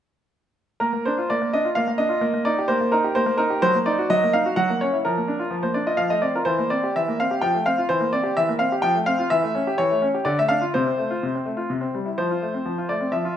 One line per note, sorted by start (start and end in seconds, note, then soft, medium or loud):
0.80 0.92 A#3 soft
0.80 1.04 A#4 medium
0.93 1.06 A#3 soft
1.05 1.18 D4 soft
1.05 1.29 C5 medium
1.18 1.30 F4 soft
1.30 1.40 A#3 soft
1.30 1.53 D5 medium
1.42 1.54 A#3 soft
1.53 1.66 D4 soft
1.53 1.67 D#5 medium
1.65 1.77 F4 soft
1.75 1.86 A#3 soft
1.75 1.90 F5 medium
1.88 2.00 A#3 soft
1.98 2.11 D4 soft
1.98 2.46 D#5 medium
2.09 2.22 F4 soft
2.21 2.32 A#3 medium
2.34 2.47 A#3 soft
2.45 2.59 D#4 soft
2.45 2.67 D5 medium
2.59 2.71 G4 soft
2.68 2.79 A#3 medium
2.68 2.92 C5 medium
2.81 2.94 A#3 soft
2.92 3.05 D#4 soft
2.92 3.16 A#4 medium
3.04 3.17 G4 soft
3.15 3.25 A#3 soft
3.15 3.39 C5 medium
3.26 3.40 A#3 medium
3.38 3.51 D#4 soft
3.38 3.62 A#4 medium
3.50 3.63 G4 soft
3.62 3.74 F#3 medium
3.62 3.76 C5 loud
3.75 3.87 A#3 soft
3.86 3.99 D#4 soft
3.86 4.07 D5 medium
3.99 4.11 F#4 soft
4.10 4.21 F#3 medium
4.10 4.31 D#5 medium
4.24 4.35 A#3 soft
4.33 4.46 D#4 soft
4.33 4.57 F5 medium
4.46 4.57 F#4 soft
4.56 4.68 F#3 medium
4.56 4.80 F#5 medium
4.70 4.82 A#3 soft
4.81 4.94 C#4 soft
4.81 4.95 C#5 medium
4.93 5.05 E4 soft
5.05 5.17 F3 soft
5.05 5.61 A#4 medium
5.18 5.30 A#3 soft
5.28 5.41 D4 soft
5.39 5.53 F4 soft
5.51 5.63 F3 soft
5.63 5.76 A#3 soft
5.63 5.76 C5 medium
5.74 5.88 D4 soft
5.74 5.87 D5 medium
5.86 5.99 F4 soft
5.86 6.00 D#5 medium
5.97 6.11 F3 soft
5.97 6.11 F5 medium
6.10 6.24 A3 soft
6.10 6.23 D#5 medium
6.22 6.36 C4 soft
6.22 6.35 D5 medium
6.35 6.48 F4 soft
6.35 6.48 A#4 medium
6.45 6.59 E3 soft
6.45 6.71 C5 medium
6.59 6.72 A#3 soft
6.70 6.84 C4 soft
6.70 6.93 D5 medium
6.84 6.96 G4 soft
6.96 7.08 E3 soft
6.96 7.17 E5 medium
7.08 7.21 A#3 soft
7.20 7.32 C4 soft
7.20 7.43 F5 medium
7.31 7.43 G4 soft
7.41 7.54 F3 soft
7.41 7.66 G5 medium
7.54 7.67 A3 soft
7.66 7.79 C4 soft
7.66 7.87 F5 medium
7.78 7.90 F4 soft
7.89 8.01 E3 soft
7.89 8.11 C5 medium
8.01 8.14 A#3 soft
8.13 8.26 C4 soft
8.13 8.34 D5 medium
8.23 8.37 G4 soft
8.37 8.49 E3 medium
8.37 8.51 E5 medium
8.49 8.61 A#3 soft
8.59 8.73 C4 soft
8.59 8.74 F5 medium
8.72 8.84 G4 soft
8.82 8.95 F3 medium
8.82 8.97 G5 medium
8.95 9.08 A3 soft
9.06 9.20 C4 soft
9.06 9.28 F5 medium
9.19 9.31 F4 soft
9.30 9.42 E3 medium
9.30 9.74 E5 medium
9.43 9.55 A3 soft
9.55 9.67 C#4 soft
9.67 9.79 G4 soft
9.78 9.90 E3 medium
9.78 10.06 C#5 medium
9.91 10.03 A3 soft
10.02 10.14 C#4 soft
10.14 10.26 G4 soft
10.25 10.37 D3 medium
10.25 10.37 D5 medium
10.39 10.51 A3 soft
10.39 10.50 E5 medium
10.49 10.63 D4 soft
10.49 10.63 F5 medium
10.62 10.74 F4 soft
10.74 10.86 C3 medium
10.74 11.32 C5 medium
10.86 10.99 C4 soft
10.98 11.11 A3 soft
11.10 11.23 F4 soft
11.23 11.35 C3 soft
11.35 11.48 C4 soft
11.46 11.59 A3 soft
11.57 11.70 F4 soft
11.70 11.82 C3 soft
11.81 11.95 C4 soft
11.94 12.08 G3 soft
12.06 12.19 E4 soft
12.18 12.30 F3 soft
12.18 12.89 C5 medium
12.31 12.43 F4 soft
12.42 12.55 A3 soft
12.54 12.67 C4 soft
12.66 12.77 F3 soft
12.78 12.91 F4 soft
12.89 13.02 A3 soft
12.89 13.11 D5 medium
13.01 13.14 C4 soft
13.12 13.25 F3 soft
13.12 13.37 E5 medium
13.25 13.37 F4 soft